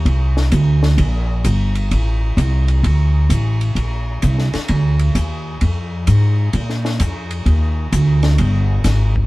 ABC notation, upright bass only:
X:1
M:4/4
L:1/8
Q:"Swing" 1/4=130
K:Eb
V:1 name="Upright bass" clef=bass
C,,2 D,,2 B,,,2 G,,,2 | =A,,,2 C,,2 D,,2 A,,,2 | B,,,2 C,, z D,,2 E,,2 | F,,2 A,,2 B,,2 F,,2 |
E,,2 D,,2 G,,,2 A,,,2 |]